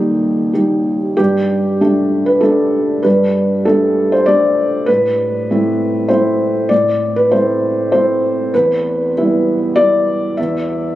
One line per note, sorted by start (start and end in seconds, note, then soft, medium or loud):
0.00 1.21 D#2 soft
0.00 0.51 G3 soft
0.00 0.51 D#4 soft
0.00 0.55 G4 medium
0.53 1.15 G3 soft
0.53 1.15 D#4 soft
0.53 1.15 G4 soft
1.17 1.79 G2 soft
1.17 1.80 G4 medium
1.81 2.39 A3 soft
1.81 2.39 D4 soft
1.81 2.39 G4 soft
2.26 2.42 B4 medium
2.41 3.00 A3 soft
2.41 3.01 D4 soft
2.41 3.01 G4 soft
2.41 3.03 A4 medium
3.03 3.64 G2 medium
3.03 3.65 B4 medium
3.65 4.24 A3 soft
3.65 4.25 D4 soft
3.65 4.25 G4 soft
3.65 4.12 A4 medium
4.12 4.28 C5 medium
4.26 4.84 A3 soft
4.26 4.85 D4 soft
4.26 4.85 G4 soft
4.26 4.87 D5 medium
4.86 5.48 A2 soft
4.86 6.09 B4 medium
5.51 6.07 A3 soft
5.51 6.07 C4 soft
5.51 6.07 E4 soft
6.09 6.67 A3 soft
6.09 6.67 C4 soft
6.09 6.67 E4 soft
6.09 6.70 C5 medium
6.69 7.30 A2 soft
6.69 7.16 D5 medium
7.16 7.32 B4 medium
7.32 7.89 A3 soft
7.32 7.90 C4 soft
7.32 7.90 E4 soft
7.32 7.90 C5 medium
7.92 8.50 A3 soft
7.92 8.51 C4 soft
7.92 8.51 E4 soft
7.92 8.53 C5 medium
8.54 9.13 E2 medium
8.54 9.76 B4 medium
9.17 9.73 G3 soft
9.17 9.73 B3 soft
9.17 9.74 E4 soft
9.76 10.34 G3 soft
9.76 10.34 B3 soft
9.76 10.34 E4 soft
9.76 10.37 D5 medium
10.37 10.95 E2 medium
10.37 10.95 E5 medium